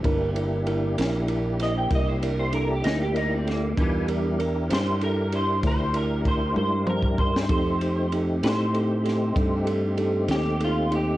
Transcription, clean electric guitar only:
\new Staff \with { instrumentName = "Clean electric guitar" } { \time 12/8 \key c \mixolydian \tempo 4. = 64 a'8 r2 ees''16 g''16 ees''16 c''16 bes'16 c''16 bes'16 g'16 ees'16 g'16 ees'16 c'16 bes8 | g4 r8 c''8 bes'8 c''8 c''8 bes'8 c''8 c''8 bes'8 c''8 | c''4 r8 c''2. g'8 f'8 g'8 | }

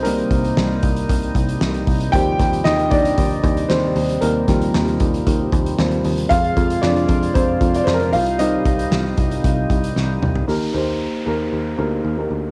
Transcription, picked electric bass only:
\new Staff \with { instrumentName = "Picked electric bass" } { \clef bass \time 4/4 \key ees \major \tempo 4 = 115 c,8 c,8 c,8 c,8 c,8 c,8 c,8 c,8 | ees,8 ees,8 ees,8 ees,8 ees,8 ees,8 ees,8 ees,8 | ees,8 ees,8 ees,8 ees,8 ees,8 ees,8 ees,8 ees,8 | f,8 f,8 f,8 f,8 f,8 f,8 f,8 c,8~ |
c,8 c,8 c,8 c,8 c,8 c,8 c,8 c,8 | ees,8 ees,8. r16 ees,8 ees,8 d,8 ees,8 d,8 | }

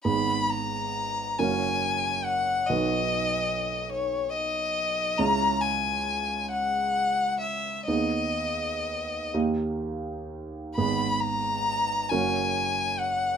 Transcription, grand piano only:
\new Staff \with { instrumentName = "Grand piano" } { \time 6/8 \key gis \minor \tempo 4. = 45 <gis,, b dis' gis'>4. <fis,, cis' fis' ais'>4. | <b,, dis' fis' b'>2. | <cis, cis' e' gis'>2. | <dis, b dis' gis'>4. <dis, ais dis' g'>4. |
<gis,, b dis' gis'>4. <fis,, cis' fis' ais'>4. | }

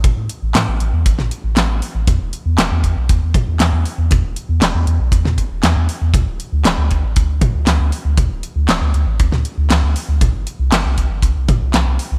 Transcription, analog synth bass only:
\new Staff \with { instrumentName = "Analog synth bass" } { \clef bass \time 4/4 \key e \phrygian \tempo 4 = 118 a,,16 a,16 r16 a,,16 a,16 a,,16 a,,16 e,16 a,,16 a,,16 r16 a,,16 a,,16 a,,16 r16 a,,16 | e,16 e,,16 r16 e,16 e,,16 e,16 e,16 b,,16 e,16 e,16 r16 e,16 e,16 e,16 r16 e,16 | e,16 e,,16 r16 e,16 e,,16 e,16 e,16 b,,16 e,16 e,16 r16 e,,16 e,16 e,16 r16 e,16 | d,16 d,,16 r16 d,16 d,,16 d,16 d,16 a,,16 d,16 d,16 r16 d,16 d,16 d,16 r16 d,16 |
d,16 d,,16 r16 d,16 d,,16 d,16 d,16 a,,16 d,16 d,16 r16 d,16 d,16 d,16 r16 d,16 | c,16 g,,16 r16 c,16 g,,16 c,16 c,16 g,,16 c,16 c,16 r16 c,16 c,16 c,16 r16 c,16 | }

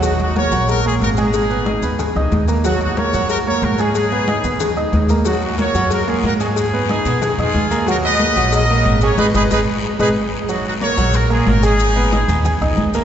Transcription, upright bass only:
\new Staff \with { instrumentName = "Upright bass" } { \clef bass \time 4/4 \key ees \minor \tempo 4 = 184 ees,4. bes,,4. aes,,4~ | aes,,4. ees,4 des,8 ees,4~ | ees,4. ges,4. aes,4~ | aes,4. ees,4. ees,4~ |
ees,4. ges,4. aes,4~ | aes,4. ces4 f,8 ees,4~ | ees,4. bes,,4. aes,,4 | aes,,8 aes,,8 aes,,8 r4 aes,,8 r4 |
r4. bes,,4. aes,,4~ | aes,,4. ees,4 des,8 ees,4 | }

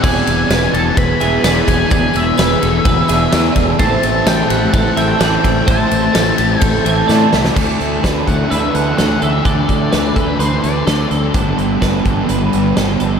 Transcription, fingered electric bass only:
\new Staff \with { instrumentName = "Fingered electric bass" } { \clef bass \time 4/4 \key d \mixolydian \tempo 4 = 127 e,,8 e,,8 e,,8 e,,8 e,,8 e,,8 e,,8 e,,8 | e,,8 e,,8 e,,8 e,,8 e,,8 e,,8 e,8 e,,8 | a,,8 a,,8 a,,8 a,,8 a,,8 a,,8 a,,8 a,,8 | a,,8 a,,8 a,,8 a,,8 a,,8 a,,8 a,8 c,8 |
d,8 d,8 d,8 d,8 d,8 d,8 d,8 d,8 | d,8 d,8 d,8 d,8 d,8 d,8 d,8 d,8 | g,,8 g,,8 g,,8 g,,8 g,,8 g,,8 g,,8 g,,8 | }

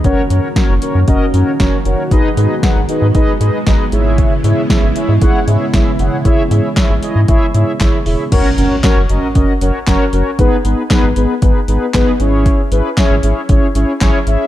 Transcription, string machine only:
\new Staff \with { instrumentName = "String machine" } { \time 4/4 \key fis \mixolydian \tempo 4 = 116 << { <dis fis'>1~ | <dis fis'>2.~ <dis fis'>8 <cis e'>8~ | <cis e'>1~ | <cis e'>1 |
r1 | r1 | r1 | } \\ { <ais cis'>1 | <gis b>1~ | <gis b>1~ | <gis b>1 |
r1 | r1 | r1 | } >> }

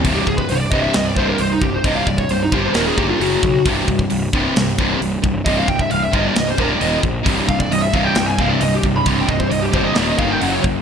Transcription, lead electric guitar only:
\new Staff \with { instrumentName = "Lead electric guitar" } { \time 4/4 \key c \minor \tempo 4 = 133 r16 g'16 aes'16 b'16 c''16 d''16 ees''16 e''16 ees''16 d''16 c''16 bes'16 c''16 ees'16 g'16 c''16 | ees''16 f''16 d''16 des''16 c''16 ees'16 g'16 c''16 bes'16 aes'16 g'16 f'16 fis'4 | r1 | ees''16 f''16 g''16 e''16 f''16 e''16 ees''16 d''16 ees''16 c''16 bes'16 d''16 ees''8 r8 |
r8 f''16 d''16 ees''16 e''16 f''16 g''16 g''16 aes''16 f''16 d''16 ees''16 g'16 r16 b''16 | c'''16 g''16 ees''16 c''16 ees''16 g'16 c''16 ees''16 d''16 ees''16 f''16 g''16 fis''16 cis''16 r8 | }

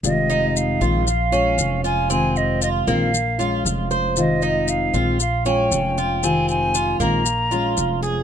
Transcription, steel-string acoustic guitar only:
\new Staff \with { instrumentName = "Steel-string acoustic guitar" } { \time 4/4 \key f \minor \tempo 4 = 116 <c ees aes c' f'>4. <ees aes c' f'>8 r8 <aes des' f'>8 <f aes des' f'>4 | <c ees aes c' f'>4. <ees aes c' f'>8 r8 <aes des' f'>8 <f aes des' f'>4 | <c ees aes c' f'>4. <ees aes c' f'>8 r8 <aes des' f'>8 <f aes des' f'>4 | <c ees aes c' f'>4. <ees aes c' f'>8 r8 <aes des' f'>8 <f aes des' f'>4 | }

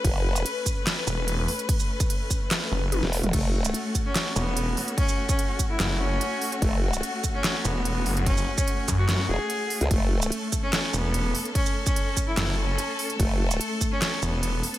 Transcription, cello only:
\new Staff \with { instrumentName = "Cello" } { \time 4/4 \key fis \minor \tempo 4 = 146 r1 | r1 | a8 r16 a8 r8 cis'8 r16 b4~ b16 r16 | cis'8 r16 cis'8 r8 e'8 r16 cis'4~ cis'16 r16 |
a8 r16 a8 r8 cis'8 r16 b4~ b16 r16 | cis'8 r16 cis'8 r8 fis'8 r16 gis'4~ gis'16 r16 | a8 r16 a8 r8 cis'8 r16 b4~ b16 r16 | cis'8 r16 cis'8 r8 e'8 r16 cis'4~ cis'16 r16 |
a8 r16 a8 r8 cis'8 r16 b4~ b16 r16 | }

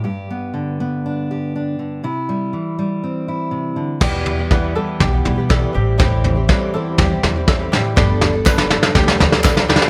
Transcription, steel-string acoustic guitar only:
\new Staff \with { instrumentName = "Steel-string acoustic guitar" } { \clef bass \time 4/4 \key e \minor \tempo 4 = 121 << { <g g'>8 b4 b8 d'8 g'8 d'4 | e'8 g4 g8 c'8 e'4.~ | e'8 g'8 b8 g8 b8 g4. | g'8 c'8 g8 c'8 g4 g'8 r8 |
r1 | } \\ { g,4 d2~ d8 d8 | c4 e2 c8 d8 | e,4 e4 b,4 e8 a,8~ | a,8 e4 e,4 e4 a,8 |
r1 | } >> }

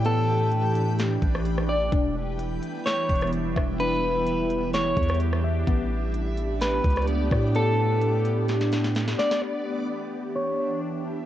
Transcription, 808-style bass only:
\new Staff \with { instrumentName = "808-style bass" } { \clef bass \time 4/4 \key e \dorian \tempo 4 = 128 a,2~ a,8 a,,4. | e,,4. r4 e,,4 e,,8~ | e,,2~ e,,8 e,4. | a,,2~ a,,8 cis,4 a,8~ |
a,2.~ a,8 r8 | r1 | }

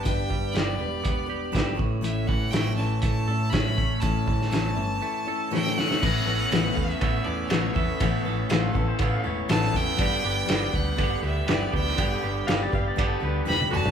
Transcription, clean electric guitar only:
\new Staff \with { instrumentName = "Clean electric guitar" } { \time 4/4 \key a \mixolydian \tempo 4 = 121 <g, b d' g'>8 g8 b8 g8 b8 g'8 d'8 a,8 | a,8 e8 a8 e8 a8 a'8 cis'8 a8 | a,8 e8 a8 e8 a8 a'8 cis'8 a8 | <a, e b cis' a'>8 <b cis' a'>8 <e b cis' a'>4 <a, e b cis' a'>8 <b cis' a'>8 <e b cis' a'>8 <b cis' a'>8 |
<a, e b cis' a'>8 <b cis' a'>8 <e b cis' a'>4 <a, e b cis' a'>8 <b cis' a'>8 <e b cis' a'>8 <b cis' a'>8 | <g, d g b d' g'>8 <g b d' g'>8 <g b d' g'>4 <g, d g b d' g'>8 <g b d' g'>8 <g b d' g'>8 <g b d' g'>8 | <g, d g b d' g'>8 <g b d' g'>8 <g b d' g'>4 <g, d g b d' g'>8 <g b d' g'>8 <g b d' g'>8 <fis a d' fis'>8 | }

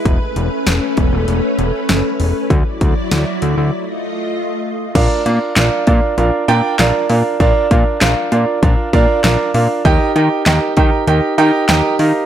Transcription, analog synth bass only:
\new Staff \with { instrumentName = "Analog synth bass" } { \clef bass \time 4/4 \key a \major \tempo 4 = 98 e,,16 r16 e,,16 r16 e,,16 r16 e,,16 e,,16 e,,16 r16 e,,16 r16 fis,,16 r16 e,,16 r16 | d,16 r16 d,16 r16 d,16 r16 d,16 d,16 r2 | \key bes \major bes,,16 r16 bes,16 r16 bes,,16 r16 bes,16 r16 bes,,16 r16 bes,16 r16 bes,,16 r16 bes,16 r16 | bes,,16 r16 bes,16 r16 bes,,16 r16 bes,16 r16 bes,,16 r16 bes,16 r16 bes,,16 r16 bes,16 r16 |
ees,16 r16 ees16 r16 ees,16 r16 ees16 r16 ees,16 r16 ees16 r16 ees,16 r16 ees16 r16 | }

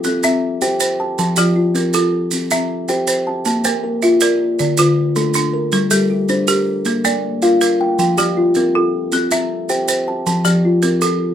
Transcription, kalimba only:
\new Staff \with { instrumentName = "Kalimba" } { \time 12/8 \key c \mixolydian \tempo 4. = 106 << { a'8 e''4 g''4 a''4 g'8 f'4 a'4~ | a'8 e''4 g''4 a''4 c''8 bes'4 d''4~ | d''8 f'4 a'4 bes'4 a'8 g'4 bes'4~ | bes'8 d''4 f''4 g''4 g'8 f'4 a'4~ |
a'8 e''4 g''4 a''4 g'8 f'4 a'4 | } \\ { c'4 r8 g'4 r8 f4 r8 c'4 r8 | c'4 r8 g'4 r8 bes4 r8 f'4 r8 | d4 r8 a4 r8 g4 r8 d'4 r8 | bes4 r8 f'4 r8 f4 r8 c'4 r8 |
c'4 r8 g'4 r8 f4 r8 c'4 r8 | } >> }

